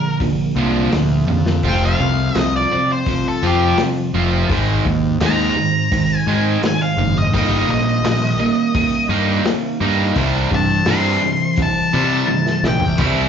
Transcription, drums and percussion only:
0.20 kick, open hi-hat
0.92 snare, open hi-hat
1.28 high tom
1.46 snare
1.63 kick, open hi-hat
2.35 snare, open hi-hat
3.06 kick, open hi-hat
3.77 snare, open hi-hat
4.49 kick, open hi-hat
4.85 kick
5.20 snare, open hi-hat
5.92 kick, open hi-hat
6.63 snare, open hi-hat
7.34 kick, open hi-hat
8.05 snare, open hi-hat
8.74 kick, open hi-hat
9.45 snare, open hi-hat
10.15 kick, open hi-hat
10.52 kick
10.85 snare, open hi-hat
11.56 kick, open hi-hat
12.28 high tom
12.46 snare
12.64 snare
12.80 floor tom
12.98 kick, crash

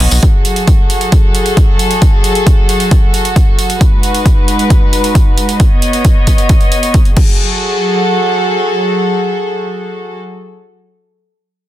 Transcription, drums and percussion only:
0.00 open hi-hat
0.11 open hi-hat, tambourine
0.23 kick, closed hi-hat
0.45 closed hi-hat
0.56 closed hi-hat
0.68 kick, closed hi-hat
0.90 closed hi-hat
1.01 closed hi-hat
1.12 kick, closed hi-hat
1.35 closed hi-hat
1.46 closed hi-hat
1.57 kick, closed hi-hat
1.79 closed hi-hat
1.91 closed hi-hat
2.02 kick, closed hi-hat
2.24 closed hi-hat
2.35 closed hi-hat
2.47 kick, closed hi-hat
2.69 closed hi-hat
2.80 closed hi-hat
2.91 kick, closed hi-hat
3.14 closed hi-hat
3.25 closed hi-hat
3.36 kick, closed hi-hat
3.59 closed hi-hat
3.70 closed hi-hat
3.81 kick, closed hi-hat
4.03 closed hi-hat
4.15 closed hi-hat
4.26 kick, closed hi-hat
4.48 closed hi-hat
4.59 closed hi-hat
4.70 kick, closed hi-hat
4.93 closed hi-hat
5.04 closed hi-hat
5.15 kick, closed hi-hat
5.38 closed hi-hat
5.49 closed hi-hat
5.60 kick, closed hi-hat
5.82 closed hi-hat
5.93 closed hi-hat
6.05 kick, closed hi-hat
6.27 kick, closed hi-hat
6.38 closed hi-hat
6.49 kick, closed hi-hat
6.61 closed hi-hat
6.72 closed hi-hat
6.83 closed hi-hat
6.94 kick, closed hi-hat
7.05 closed hi-hat
7.17 kick, crash

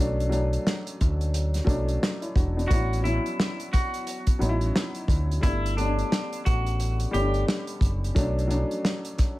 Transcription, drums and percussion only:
0.20 closed hi-hat
0.32 closed hi-hat
0.53 closed hi-hat
0.67 snare
0.87 closed hi-hat
1.01 kick, closed hi-hat
1.21 closed hi-hat
1.34 closed hi-hat
1.54 snare, closed hi-hat
1.67 kick, closed hi-hat
1.88 closed hi-hat
2.03 snare
2.22 closed hi-hat
2.36 kick, closed hi-hat
2.59 closed hi-hat
2.71 kick, closed hi-hat
2.93 closed hi-hat
3.05 closed hi-hat
3.26 closed hi-hat
3.40 snare
3.60 closed hi-hat
3.73 kick, snare, closed hi-hat
3.94 closed hi-hat
4.07 closed hi-hat
4.27 kick, closed hi-hat
4.41 closed hi-hat
4.61 closed hi-hat
4.76 snare
4.95 closed hi-hat
5.08 kick, closed hi-hat
5.31 closed hi-hat
5.43 kick, closed hi-hat
5.66 closed hi-hat
5.78 closed hi-hat
5.99 closed hi-hat
6.12 snare
6.33 closed hi-hat
6.46 kick, closed hi-hat
6.66 closed hi-hat
6.80 closed hi-hat
7.00 closed hi-hat
7.14 closed hi-hat
7.34 closed hi-hat
7.48 snare
7.67 closed hi-hat
7.81 kick, closed hi-hat
8.04 closed hi-hat
8.16 kick, closed hi-hat
8.39 closed hi-hat
8.51 closed hi-hat
8.71 closed hi-hat
8.85 snare
9.05 closed hi-hat
9.18 kick, snare, closed hi-hat

